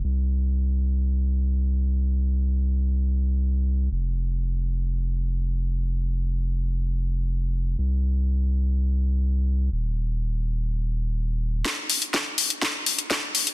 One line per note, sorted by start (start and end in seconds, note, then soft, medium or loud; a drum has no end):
0.04 3.89 C2 medium
3.91 7.76 F1 medium
7.78 9.69 C2 medium
9.72 11.63 D#1 medium
11.65 kick loud
11.65 snare soft
11.65 closed hi-hat medium
11.90 open hi-hat loud
12.02 closed hi-hat medium
12.14 kick loud
12.14 snare soft
12.14 closed hi-hat soft
12.38 open hi-hat medium
12.50 closed hi-hat medium
12.62 kick loud
12.62 snare soft
12.62 closed hi-hat medium
12.86 open hi-hat loud
12.99 closed hi-hat medium
13.10 kick loud
13.10 snare soft
13.10 closed hi-hat medium
13.35 open hi-hat medium
13.47 closed hi-hat medium